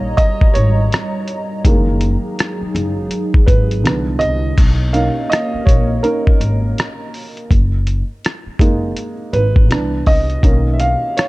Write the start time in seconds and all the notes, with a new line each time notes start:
Already playing: A#1 D#3 G3 A#3 C#4 C#5 D#5 F5 A#5
0.17 D#5, kick, closed hi-hat
0.41 kick
0.54 G#1 C#5, closed hi-hat
0.92 cross-stick, closed hi-hat
1.28 closed hi-hat
1.65 F#1 D#3 F#3 G#3 A#3 D#4 G#4, kick, closed hi-hat
2.01 closed hi-hat
2.39 cross-stick, closed hi-hat
2.61 muted upright bass stroke
2.75 F#1, closed hi-hat
3.11 closed hi-hat
3.34 kick
3.46 G#1 B4, kick, closed hi-hat
3.71 closed hi-hat
3.84 C2 D3 E3 B3, cross-stick, closed hi-hat
4.19 C2 D#5, closed hi-hat
4.57 B1 A#3 A#4 C#5 D#5, kick, closed hi-hat, crash
4.93 A#3 C#4 D#4 F5, closed hi-hat
5.30 D#5, cross-stick, closed hi-hat
5.54 muted upright bass stroke
5.66 A#1 C#5, kick, closed hi-hat
6.03 A#3 C#4 D#4 A#4, closed hi-hat
6.27 kick
6.40 G#1, closed hi-hat
6.78 cross-stick, closed hi-hat
7.14 open hi-hat
7.37 closed hi-hat
7.51 F#1, kick, closed hi-hat
7.87 closed hi-hat
8.25 cross-stick, closed hi-hat
8.46 muted upright bass stroke
8.59 F#1 G#3 A#3 D#4, kick, closed hi-hat
8.97 closed hi-hat
9.33 G#1 B4, closed hi-hat
9.56 kick
9.70 C2 E3 B3 D4, cross-stick, closed hi-hat
10.06 C2 D#5, kick, open hi-hat
10.30 closed hi-hat
10.43 B1 D#3 A#3 C#4, kick, closed hi-hat
10.73 E5
10.80 F5, closed hi-hat
11.17 C#5, cross-stick, closed hi-hat